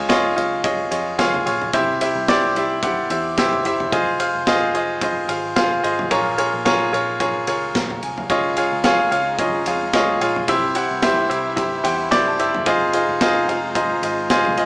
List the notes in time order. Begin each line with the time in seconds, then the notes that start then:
Already playing: C#2 C#3 F4 G#4 C#5 D#5
0.09 F4 G#4 C#5 D#5, kick, snare, ride
0.36 C#2 F4 G#4 C#5 D#5, ride
0.64 F4 G#4 C#5 D#5, kick, ride
0.91 F2 F4 G#4 C#5 D#5, ride
1.18 C#2 F4 G#4 C#5 F5, kick, snare, ride
1.34 floor tom
1.46 A#1 F4 G#4 C#5 F5, ride
1.62 floor tom
1.73 C2 C3 E4 G4 C5 E5, kick, ride
2.01 E4 G4 C5 E5, ride
2.16 C2
2.28 E4 G4 C5 D5, kick, snare, ride
2.55 C2 E4 G4 C5 E5, ride
2.83 E4 G4 C5 F#5, kick, ride
3.10 E2 E4 G4 C5 E5, ride
3.38 C2 E4 G4 C5 E5, kick, snare, ride
3.53 floor tom
3.65 F#1 E4 G4 C5 E5, ride
3.80 floor tom
3.92 F1 F4 G#4 C5 D#5, kick, ride
4.19 F4 G#4 C5 F5, ride
4.35 F1
4.47 F4 G#4 C5 D#5, kick, snare, ride
4.74 F1 F4 G#4 C5 D#5, ride
5.01 F4 G#4 C5 D#5, kick, ride
5.29 G#1 F4 G#4 C5 F5, ride
5.56 F1 F4 G#4 C5 F5, kick, snare, ride
5.83 G#1 F4 G#4 C5 D#5, ride
5.99 floor tom
6.11 A#1 A#2 F4 G#4 A#4 C#5, kick, ride
6.38 F4 G#4 A#4 C#5, ride
6.54 A#1
6.65 F4 G#4 A#4 C#5, kick, snare, ride
6.92 A#1 F4 G#4 A#4 C#5, ride
7.20 F4 G#4 A#4 C#5, kick, ride
7.47 C#2 F4 G#4 A#4 C#5, ride
7.75 A#1 A#5, kick, snare, ride
7.90 floor tom
8.02 C2 G#5, ride
8.18 F5, floor tom
8.30 C#2 C#3 F3 G#3 D#4 F4 G#4 C#5 D#5, kick, ride
8.57 F4 G#4 C#5 F5, ride
8.72 C#2
8.84 F4 G#4 C#5 F5, kick, snare, ride
9.11 C#2 F4 G#4 C#5 F5, ride
9.39 F4 G#4 C#5 D#5, kick, ride
9.66 F2 F4 G#4 C#5 F5, ride
9.93 C#2 F4 G#4 C#5 D#5, kick, snare, ride
10.21 A#1 F4 G#4 C#5 F5, ride
10.36 floor tom
10.48 C2 C3 E3 G3 E4 G4 C5 E5, kick, ride
10.75 E4 G4 C5 F#5, ride
10.91 C2
11.02 E4 G4 C5 E5, kick, snare, ride
11.29 C2 E4 G4 C5 E5, ride
11.56 E4 G4 C5 E5, kick, ride
11.84 E2 E4 G4 C5 F#5 G5, ride
12.11 C2 E4 G4 C5 D5 G5, kick, snare, ride
12.28 A5
12.39 F#1 E4 G4 C5 E5, ride
12.54 floor tom
12.66 F1 F3 G#3 D#4 F4 G#4 C5 D#5, kick, ride
12.93 F4 G#4 C5 D#5, ride
13.09 F1
13.21 F4 G#4 C5 D#5, kick, snare, ride
13.48 F1 F4 G#4 C5 F5, ride
13.75 F4 G#4 C5 D#5, kick, ride
14.02 G#1 F4 G#4 C5 D#5, ride
14.30 F1 F4 G#4 C5 D#5, kick, snare, ride
14.45 floor tom
14.56 C2 F4 G#4 C5 D#5, ride